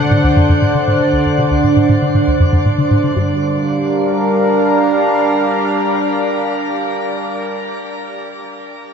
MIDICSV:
0, 0, Header, 1, 4, 480
1, 0, Start_track
1, 0, Key_signature, -2, "minor"
1, 0, Tempo, 508475
1, 1064, Time_signature, 4, 2, 24, 8
1, 8434, End_track
2, 0, Start_track
2, 0, Title_t, "Synth texture"
2, 0, Program_c, 0, 99
2, 0, Note_on_c, 0, 74, 82
2, 2993, Note_off_c, 0, 74, 0
2, 8434, End_track
3, 0, Start_track
3, 0, Title_t, "Analog synth pad"
3, 0, Program_c, 1, 89
3, 0, Note_on_c, 1, 50, 74
3, 0, Note_on_c, 1, 62, 75
3, 0, Note_on_c, 1, 72, 66
3, 0, Note_on_c, 1, 78, 85
3, 2984, Note_off_c, 1, 50, 0
3, 2984, Note_off_c, 1, 62, 0
3, 2984, Note_off_c, 1, 72, 0
3, 2984, Note_off_c, 1, 78, 0
3, 2986, Note_on_c, 1, 55, 70
3, 3056, Note_on_c, 1, 62, 69
3, 3128, Note_on_c, 1, 70, 69
3, 3201, Note_on_c, 1, 77, 71
3, 7169, Note_off_c, 1, 55, 0
3, 7238, Note_off_c, 1, 62, 0
3, 7311, Note_off_c, 1, 70, 0
3, 7384, Note_off_c, 1, 77, 0
3, 8434, End_track
4, 0, Start_track
4, 0, Title_t, "Synth arpeggio sound"
4, 0, Program_c, 2, 84
4, 103, Note_on_c, 2, 45, 76
4, 175, Note_off_c, 2, 45, 0
4, 223, Note_on_c, 2, 38, 68
4, 332, Note_off_c, 2, 38, 0
4, 343, Note_on_c, 2, 42, 95
4, 416, Note_off_c, 2, 42, 0
4, 463, Note_on_c, 2, 42, 88
4, 572, Note_off_c, 2, 42, 0
4, 583, Note_on_c, 2, 45, 75
4, 692, Note_off_c, 2, 45, 0
4, 703, Note_on_c, 2, 50, 71
4, 812, Note_off_c, 2, 50, 0
4, 824, Note_on_c, 2, 45, 93
4, 896, Note_off_c, 2, 45, 0
4, 944, Note_on_c, 2, 50, 68
4, 1052, Note_off_c, 2, 50, 0
4, 1064, Note_on_c, 2, 38, 76
4, 1172, Note_off_c, 2, 38, 0
4, 1184, Note_on_c, 2, 42, 69
4, 1227, Note_off_c, 2, 42, 0
4, 1305, Note_on_c, 2, 48, 94
4, 1377, Note_off_c, 2, 48, 0
4, 1424, Note_on_c, 2, 38, 91
4, 1496, Note_off_c, 2, 38, 0
4, 1544, Note_on_c, 2, 45, 74
4, 1652, Note_off_c, 2, 45, 0
4, 1664, Note_on_c, 2, 45, 91
4, 1772, Note_off_c, 2, 45, 0
4, 1784, Note_on_c, 2, 45, 94
4, 1856, Note_off_c, 2, 45, 0
4, 1905, Note_on_c, 2, 50, 69
4, 2013, Note_off_c, 2, 50, 0
4, 2024, Note_on_c, 2, 45, 76
4, 2096, Note_off_c, 2, 45, 0
4, 2145, Note_on_c, 2, 38, 69
4, 2253, Note_off_c, 2, 38, 0
4, 2265, Note_on_c, 2, 42, 93
4, 2337, Note_off_c, 2, 42, 0
4, 2384, Note_on_c, 2, 42, 88
4, 2492, Note_off_c, 2, 42, 0
4, 2504, Note_on_c, 2, 45, 76
4, 2612, Note_off_c, 2, 45, 0
4, 2625, Note_on_c, 2, 50, 68
4, 2733, Note_off_c, 2, 50, 0
4, 2744, Note_on_c, 2, 45, 92
4, 2816, Note_off_c, 2, 45, 0
4, 2865, Note_on_c, 2, 50, 67
4, 2973, Note_off_c, 2, 50, 0
4, 2984, Note_on_c, 2, 43, 82
4, 3207, Note_off_c, 2, 43, 0
4, 8434, End_track
0, 0, End_of_file